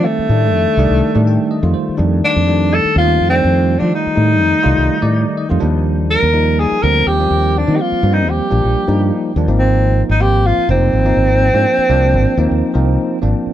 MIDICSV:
0, 0, Header, 1, 5, 480
1, 0, Start_track
1, 0, Tempo, 483092
1, 58, Time_signature, 4, 2, 24, 8
1, 13446, End_track
2, 0, Start_track
2, 0, Title_t, "Tenor saxophone"
2, 0, Program_c, 0, 66
2, 50, Note_on_c, 0, 57, 89
2, 1735, Note_off_c, 0, 57, 0
2, 2231, Note_on_c, 0, 62, 101
2, 2723, Note_on_c, 0, 69, 102
2, 2738, Note_off_c, 0, 62, 0
2, 2952, Note_off_c, 0, 69, 0
2, 2960, Note_on_c, 0, 65, 105
2, 3249, Note_off_c, 0, 65, 0
2, 3277, Note_on_c, 0, 60, 95
2, 3764, Note_on_c, 0, 62, 78
2, 3779, Note_off_c, 0, 60, 0
2, 3912, Note_off_c, 0, 62, 0
2, 3927, Note_on_c, 0, 63, 97
2, 5556, Note_off_c, 0, 63, 0
2, 6068, Note_on_c, 0, 70, 104
2, 6555, Note_on_c, 0, 68, 88
2, 6570, Note_off_c, 0, 70, 0
2, 6784, Note_on_c, 0, 70, 96
2, 6799, Note_off_c, 0, 68, 0
2, 7032, Note_on_c, 0, 67, 95
2, 7046, Note_off_c, 0, 70, 0
2, 7528, Note_on_c, 0, 62, 75
2, 7542, Note_off_c, 0, 67, 0
2, 7711, Note_on_c, 0, 67, 66
2, 7726, Note_off_c, 0, 62, 0
2, 7765, Note_on_c, 0, 65, 90
2, 7780, Note_off_c, 0, 67, 0
2, 8080, Note_on_c, 0, 63, 76
2, 8095, Note_off_c, 0, 65, 0
2, 8244, Note_on_c, 0, 67, 74
2, 8259, Note_off_c, 0, 63, 0
2, 9195, Note_off_c, 0, 67, 0
2, 9527, Note_on_c, 0, 60, 80
2, 9963, Note_off_c, 0, 60, 0
2, 10047, Note_on_c, 0, 63, 82
2, 10145, Note_on_c, 0, 67, 93
2, 10160, Note_off_c, 0, 63, 0
2, 10398, Note_on_c, 0, 65, 96
2, 10413, Note_off_c, 0, 67, 0
2, 10631, Note_off_c, 0, 65, 0
2, 10637, Note_on_c, 0, 60, 98
2, 12988, Note_off_c, 0, 60, 0
2, 13446, End_track
3, 0, Start_track
3, 0, Title_t, "Tine electric piano"
3, 0, Program_c, 1, 4
3, 0, Note_on_c, 1, 51, 62
3, 0, Note_on_c, 1, 55, 59
3, 0, Note_on_c, 1, 57, 61
3, 0, Note_on_c, 1, 60, 72
3, 260, Note_off_c, 1, 51, 0
3, 262, Note_off_c, 1, 57, 0
3, 263, Note_off_c, 1, 55, 0
3, 263, Note_off_c, 1, 60, 0
3, 299, Note_on_c, 1, 62, 85
3, 300, Note_on_c, 1, 55, 65
3, 301, Note_on_c, 1, 51, 70
3, 306, Note_on_c, 1, 57, 65
3, 730, Note_off_c, 1, 62, 0
3, 731, Note_off_c, 1, 51, 0
3, 731, Note_off_c, 1, 55, 0
3, 734, Note_off_c, 1, 57, 0
3, 775, Note_on_c, 1, 55, 79
3, 777, Note_on_c, 1, 51, 93
3, 785, Note_on_c, 1, 57, 78
3, 786, Note_on_c, 1, 62, 105
3, 1103, Note_off_c, 1, 55, 0
3, 1104, Note_off_c, 1, 51, 0
3, 1108, Note_off_c, 1, 57, 0
3, 1108, Note_off_c, 1, 62, 0
3, 1141, Note_on_c, 1, 51, 83
3, 1142, Note_on_c, 1, 55, 73
3, 1143, Note_on_c, 1, 57, 73
3, 1143, Note_on_c, 1, 62, 91
3, 1266, Note_on_c, 1, 79, 65
3, 1486, Note_off_c, 1, 79, 0
3, 1499, Note_on_c, 1, 75, 60
3, 1569, Note_off_c, 1, 51, 0
3, 1569, Note_off_c, 1, 55, 0
3, 1570, Note_off_c, 1, 57, 0
3, 1570, Note_off_c, 1, 62, 0
3, 1613, Note_on_c, 1, 51, 82
3, 1620, Note_on_c, 1, 55, 69
3, 1621, Note_on_c, 1, 57, 75
3, 1624, Note_on_c, 1, 65, 84
3, 1722, Note_off_c, 1, 75, 0
3, 1727, Note_on_c, 1, 72, 65
3, 1936, Note_off_c, 1, 51, 0
3, 1940, Note_off_c, 1, 55, 0
3, 1940, Note_off_c, 1, 57, 0
3, 1941, Note_off_c, 1, 65, 0
3, 1956, Note_off_c, 1, 72, 0
3, 1960, Note_on_c, 1, 51, 76
3, 1961, Note_on_c, 1, 55, 63
3, 1965, Note_on_c, 1, 57, 68
3, 1968, Note_on_c, 1, 62, 83
3, 2401, Note_off_c, 1, 51, 0
3, 2402, Note_off_c, 1, 55, 0
3, 2404, Note_off_c, 1, 57, 0
3, 2405, Note_off_c, 1, 62, 0
3, 2460, Note_on_c, 1, 51, 79
3, 2460, Note_on_c, 1, 55, 76
3, 2460, Note_on_c, 1, 57, 68
3, 2469, Note_on_c, 1, 62, 89
3, 2891, Note_off_c, 1, 55, 0
3, 2892, Note_off_c, 1, 51, 0
3, 2892, Note_off_c, 1, 57, 0
3, 2896, Note_off_c, 1, 62, 0
3, 2932, Note_on_c, 1, 51, 71
3, 2937, Note_on_c, 1, 55, 63
3, 2939, Note_on_c, 1, 57, 66
3, 2943, Note_on_c, 1, 60, 76
3, 3262, Note_off_c, 1, 51, 0
3, 3265, Note_off_c, 1, 55, 0
3, 3266, Note_off_c, 1, 57, 0
3, 3268, Note_off_c, 1, 60, 0
3, 3286, Note_on_c, 1, 51, 75
3, 3291, Note_on_c, 1, 55, 71
3, 3291, Note_on_c, 1, 57, 70
3, 3293, Note_on_c, 1, 62, 77
3, 3722, Note_off_c, 1, 51, 0
3, 3725, Note_off_c, 1, 55, 0
3, 3725, Note_off_c, 1, 57, 0
3, 3726, Note_off_c, 1, 62, 0
3, 3771, Note_on_c, 1, 51, 65
3, 3778, Note_on_c, 1, 55, 60
3, 3779, Note_on_c, 1, 57, 61
3, 3781, Note_on_c, 1, 65, 74
3, 4096, Note_off_c, 1, 51, 0
3, 4100, Note_off_c, 1, 55, 0
3, 4100, Note_off_c, 1, 57, 0
3, 4101, Note_off_c, 1, 65, 0
3, 4124, Note_on_c, 1, 55, 68
3, 4126, Note_on_c, 1, 51, 77
3, 4128, Note_on_c, 1, 57, 72
3, 4132, Note_on_c, 1, 63, 83
3, 4564, Note_off_c, 1, 55, 0
3, 4565, Note_off_c, 1, 51, 0
3, 4567, Note_off_c, 1, 57, 0
3, 4569, Note_off_c, 1, 63, 0
3, 4594, Note_on_c, 1, 51, 87
3, 4598, Note_on_c, 1, 57, 78
3, 4600, Note_on_c, 1, 55, 84
3, 4603, Note_on_c, 1, 65, 97
3, 4935, Note_off_c, 1, 51, 0
3, 4936, Note_off_c, 1, 57, 0
3, 4937, Note_off_c, 1, 55, 0
3, 4939, Note_off_c, 1, 65, 0
3, 4978, Note_on_c, 1, 51, 73
3, 4980, Note_on_c, 1, 55, 68
3, 4990, Note_on_c, 1, 57, 77
3, 4990, Note_on_c, 1, 74, 87
3, 5340, Note_on_c, 1, 75, 64
3, 5410, Note_off_c, 1, 51, 0
3, 5411, Note_off_c, 1, 55, 0
3, 5415, Note_off_c, 1, 74, 0
3, 5416, Note_off_c, 1, 57, 0
3, 5454, Note_on_c, 1, 51, 82
3, 5459, Note_on_c, 1, 57, 70
3, 5462, Note_on_c, 1, 55, 74
3, 5465, Note_on_c, 1, 65, 84
3, 5556, Note_off_c, 1, 55, 0
3, 5562, Note_on_c, 1, 53, 87
3, 5568, Note_on_c, 1, 55, 79
3, 5569, Note_on_c, 1, 62, 96
3, 5573, Note_on_c, 1, 58, 75
3, 5575, Note_off_c, 1, 51, 0
3, 5577, Note_off_c, 1, 57, 0
3, 5581, Note_off_c, 1, 65, 0
3, 5788, Note_off_c, 1, 75, 0
3, 6221, Note_off_c, 1, 53, 0
3, 6224, Note_off_c, 1, 55, 0
3, 6224, Note_off_c, 1, 62, 0
3, 6226, Note_off_c, 1, 58, 0
3, 6290, Note_on_c, 1, 53, 75
3, 6292, Note_on_c, 1, 55, 70
3, 6294, Note_on_c, 1, 63, 83
3, 6296, Note_on_c, 1, 58, 74
3, 6729, Note_off_c, 1, 53, 0
3, 6730, Note_off_c, 1, 55, 0
3, 6731, Note_off_c, 1, 63, 0
3, 6732, Note_off_c, 1, 58, 0
3, 6783, Note_on_c, 1, 53, 70
3, 6784, Note_on_c, 1, 55, 70
3, 6790, Note_on_c, 1, 58, 72
3, 6792, Note_on_c, 1, 60, 81
3, 7110, Note_off_c, 1, 53, 0
3, 7111, Note_off_c, 1, 55, 0
3, 7114, Note_off_c, 1, 58, 0
3, 7115, Note_off_c, 1, 60, 0
3, 7142, Note_on_c, 1, 53, 72
3, 7148, Note_on_c, 1, 55, 68
3, 7149, Note_on_c, 1, 58, 66
3, 7157, Note_on_c, 1, 60, 77
3, 7573, Note_off_c, 1, 53, 0
3, 7576, Note_off_c, 1, 55, 0
3, 7576, Note_off_c, 1, 58, 0
3, 7580, Note_off_c, 1, 60, 0
3, 7619, Note_on_c, 1, 53, 67
3, 7626, Note_on_c, 1, 60, 71
3, 7627, Note_on_c, 1, 58, 66
3, 7630, Note_on_c, 1, 55, 55
3, 7943, Note_off_c, 1, 53, 0
3, 7946, Note_off_c, 1, 58, 0
3, 7946, Note_off_c, 1, 60, 0
3, 7948, Note_off_c, 1, 55, 0
3, 7975, Note_on_c, 1, 53, 76
3, 7986, Note_on_c, 1, 55, 74
3, 7986, Note_on_c, 1, 60, 78
3, 7987, Note_on_c, 1, 58, 70
3, 8412, Note_off_c, 1, 53, 0
3, 8417, Note_off_c, 1, 55, 0
3, 8417, Note_off_c, 1, 60, 0
3, 8418, Note_off_c, 1, 58, 0
3, 8448, Note_on_c, 1, 53, 71
3, 8450, Note_on_c, 1, 58, 67
3, 8453, Note_on_c, 1, 62, 80
3, 8457, Note_on_c, 1, 55, 69
3, 8783, Note_off_c, 1, 53, 0
3, 8784, Note_off_c, 1, 58, 0
3, 8786, Note_off_c, 1, 62, 0
3, 8788, Note_off_c, 1, 55, 0
3, 8819, Note_on_c, 1, 53, 82
3, 8821, Note_on_c, 1, 58, 78
3, 8823, Note_on_c, 1, 55, 74
3, 8831, Note_on_c, 1, 63, 90
3, 9251, Note_off_c, 1, 53, 0
3, 9252, Note_off_c, 1, 58, 0
3, 9254, Note_off_c, 1, 55, 0
3, 9257, Note_off_c, 1, 63, 0
3, 9309, Note_on_c, 1, 53, 81
3, 9314, Note_on_c, 1, 55, 72
3, 9315, Note_on_c, 1, 58, 71
3, 9319, Note_on_c, 1, 62, 90
3, 9407, Note_off_c, 1, 53, 0
3, 9409, Note_off_c, 1, 58, 0
3, 9419, Note_on_c, 1, 53, 69
3, 9421, Note_on_c, 1, 58, 68
3, 9425, Note_on_c, 1, 60, 67
3, 9426, Note_off_c, 1, 55, 0
3, 9426, Note_on_c, 1, 63, 82
3, 9429, Note_off_c, 1, 62, 0
3, 10069, Note_off_c, 1, 53, 0
3, 10071, Note_off_c, 1, 58, 0
3, 10073, Note_off_c, 1, 60, 0
3, 10073, Note_off_c, 1, 63, 0
3, 10134, Note_on_c, 1, 53, 86
3, 10134, Note_on_c, 1, 58, 74
3, 10139, Note_on_c, 1, 65, 93
3, 10142, Note_on_c, 1, 60, 70
3, 10571, Note_off_c, 1, 53, 0
3, 10571, Note_off_c, 1, 58, 0
3, 10573, Note_off_c, 1, 65, 0
3, 10575, Note_off_c, 1, 60, 0
3, 10616, Note_on_c, 1, 53, 75
3, 10621, Note_on_c, 1, 58, 72
3, 10627, Note_on_c, 1, 60, 65
3, 10632, Note_on_c, 1, 63, 82
3, 10946, Note_off_c, 1, 53, 0
3, 10949, Note_off_c, 1, 58, 0
3, 10952, Note_off_c, 1, 60, 0
3, 10954, Note_off_c, 1, 63, 0
3, 10979, Note_on_c, 1, 53, 77
3, 10983, Note_on_c, 1, 58, 75
3, 10989, Note_on_c, 1, 60, 63
3, 10990, Note_on_c, 1, 63, 89
3, 11410, Note_off_c, 1, 53, 0
3, 11412, Note_off_c, 1, 58, 0
3, 11415, Note_off_c, 1, 60, 0
3, 11416, Note_off_c, 1, 63, 0
3, 11462, Note_on_c, 1, 53, 82
3, 11464, Note_on_c, 1, 58, 79
3, 11468, Note_on_c, 1, 60, 68
3, 11472, Note_on_c, 1, 62, 83
3, 11783, Note_off_c, 1, 53, 0
3, 11784, Note_off_c, 1, 58, 0
3, 11785, Note_off_c, 1, 60, 0
3, 11787, Note_off_c, 1, 62, 0
3, 11817, Note_on_c, 1, 58, 83
3, 11818, Note_on_c, 1, 53, 89
3, 11822, Note_on_c, 1, 60, 83
3, 11825, Note_on_c, 1, 62, 101
3, 12251, Note_off_c, 1, 58, 0
3, 12252, Note_off_c, 1, 53, 0
3, 12253, Note_off_c, 1, 60, 0
3, 12255, Note_off_c, 1, 62, 0
3, 12297, Note_on_c, 1, 53, 80
3, 12304, Note_on_c, 1, 63, 89
3, 12305, Note_on_c, 1, 58, 85
3, 12306, Note_on_c, 1, 60, 78
3, 12626, Note_off_c, 1, 53, 0
3, 12629, Note_off_c, 1, 58, 0
3, 12629, Note_off_c, 1, 63, 0
3, 12630, Note_off_c, 1, 60, 0
3, 12657, Note_on_c, 1, 53, 85
3, 12668, Note_on_c, 1, 58, 77
3, 12668, Note_on_c, 1, 63, 88
3, 12669, Note_on_c, 1, 60, 78
3, 13087, Note_off_c, 1, 53, 0
3, 13093, Note_off_c, 1, 58, 0
3, 13093, Note_off_c, 1, 63, 0
3, 13094, Note_off_c, 1, 60, 0
3, 13132, Note_on_c, 1, 53, 76
3, 13135, Note_on_c, 1, 58, 70
3, 13143, Note_on_c, 1, 60, 72
3, 13143, Note_on_c, 1, 62, 87
3, 13446, Note_off_c, 1, 53, 0
3, 13446, Note_off_c, 1, 58, 0
3, 13446, Note_off_c, 1, 60, 0
3, 13446, Note_off_c, 1, 62, 0
3, 13446, End_track
4, 0, Start_track
4, 0, Title_t, "Fretless electric bass"
4, 0, Program_c, 2, 35
4, 291, Note_on_c, 2, 45, 82
4, 535, Note_off_c, 2, 45, 0
4, 535, Note_on_c, 2, 41, 92
4, 648, Note_off_c, 2, 41, 0
4, 767, Note_on_c, 2, 36, 91
4, 883, Note_off_c, 2, 36, 0
4, 896, Note_on_c, 2, 36, 74
4, 999, Note_off_c, 2, 36, 0
4, 1147, Note_on_c, 2, 45, 83
4, 1357, Note_off_c, 2, 45, 0
4, 1617, Note_on_c, 2, 41, 87
4, 1720, Note_off_c, 2, 41, 0
4, 1977, Note_on_c, 2, 41, 84
4, 2188, Note_off_c, 2, 41, 0
4, 2349, Note_on_c, 2, 41, 86
4, 2769, Note_off_c, 2, 41, 0
4, 2940, Note_on_c, 2, 39, 97
4, 3151, Note_off_c, 2, 39, 0
4, 3186, Note_on_c, 2, 41, 75
4, 3394, Note_off_c, 2, 41, 0
4, 3423, Note_on_c, 2, 41, 86
4, 3744, Note_off_c, 2, 41, 0
4, 3794, Note_on_c, 2, 53, 76
4, 3890, Note_off_c, 2, 53, 0
4, 4145, Note_on_c, 2, 45, 83
4, 4386, Note_off_c, 2, 45, 0
4, 4386, Note_on_c, 2, 41, 93
4, 4496, Note_off_c, 2, 41, 0
4, 4627, Note_on_c, 2, 36, 93
4, 4736, Note_off_c, 2, 36, 0
4, 4750, Note_on_c, 2, 36, 75
4, 4848, Note_off_c, 2, 36, 0
4, 4994, Note_on_c, 2, 45, 81
4, 5202, Note_off_c, 2, 45, 0
4, 5477, Note_on_c, 2, 41, 91
4, 5573, Note_off_c, 2, 41, 0
4, 5588, Note_on_c, 2, 39, 83
4, 6118, Note_off_c, 2, 39, 0
4, 6185, Note_on_c, 2, 39, 78
4, 6608, Note_off_c, 2, 39, 0
4, 6791, Note_on_c, 2, 38, 95
4, 6998, Note_off_c, 2, 38, 0
4, 7021, Note_on_c, 2, 39, 75
4, 7233, Note_off_c, 2, 39, 0
4, 7260, Note_on_c, 2, 39, 72
4, 7584, Note_off_c, 2, 39, 0
4, 7632, Note_on_c, 2, 51, 84
4, 7731, Note_off_c, 2, 51, 0
4, 7979, Note_on_c, 2, 43, 88
4, 8225, Note_off_c, 2, 43, 0
4, 8225, Note_on_c, 2, 39, 96
4, 8337, Note_off_c, 2, 39, 0
4, 8465, Note_on_c, 2, 34, 95
4, 8577, Note_off_c, 2, 34, 0
4, 8589, Note_on_c, 2, 34, 69
4, 8690, Note_off_c, 2, 34, 0
4, 8825, Note_on_c, 2, 43, 84
4, 9038, Note_off_c, 2, 43, 0
4, 9300, Note_on_c, 2, 39, 86
4, 9405, Note_off_c, 2, 39, 0
4, 9417, Note_on_c, 2, 32, 85
4, 9952, Note_off_c, 2, 32, 0
4, 10029, Note_on_c, 2, 32, 89
4, 10451, Note_off_c, 2, 32, 0
4, 10620, Note_on_c, 2, 29, 108
4, 10832, Note_off_c, 2, 29, 0
4, 10860, Note_on_c, 2, 32, 76
4, 11072, Note_off_c, 2, 32, 0
4, 11096, Note_on_c, 2, 32, 80
4, 11421, Note_off_c, 2, 32, 0
4, 11465, Note_on_c, 2, 44, 79
4, 11566, Note_off_c, 2, 44, 0
4, 11819, Note_on_c, 2, 36, 77
4, 12061, Note_on_c, 2, 32, 96
4, 12075, Note_off_c, 2, 36, 0
4, 12173, Note_off_c, 2, 32, 0
4, 12296, Note_on_c, 2, 39, 95
4, 12410, Note_off_c, 2, 39, 0
4, 12432, Note_on_c, 2, 39, 78
4, 12529, Note_off_c, 2, 39, 0
4, 12671, Note_on_c, 2, 36, 78
4, 12880, Note_off_c, 2, 36, 0
4, 13143, Note_on_c, 2, 32, 84
4, 13244, Note_off_c, 2, 32, 0
4, 13446, End_track
5, 0, Start_track
5, 0, Title_t, "Muted fretless electric bass strokes"
5, 187, Note_on_c, 9, 29, 29
5, 286, Note_off_c, 9, 29, 0
5, 1877, Note_on_c, 9, 29, 33
5, 1977, Note_off_c, 9, 29, 0
5, 2831, Note_on_c, 9, 29, 33
5, 2931, Note_off_c, 9, 29, 0
5, 4040, Note_on_c, 9, 29, 34
5, 4139, Note_off_c, 9, 29, 0
5, 6675, Note_on_c, 9, 29, 29
5, 6775, Note_off_c, 9, 29, 0
5, 7870, Note_on_c, 9, 29, 32
5, 7969, Note_off_c, 9, 29, 0
5, 10513, Note_on_c, 9, 29, 36
5, 10612, Note_off_c, 9, 29, 0
5, 11707, Note_on_c, 9, 29, 34
5, 11806, Note_off_c, 9, 29, 0
5, 13379, Note_on_c, 9, 29, 31
5, 13446, Note_off_c, 9, 29, 0
5, 13446, End_track
0, 0, End_of_file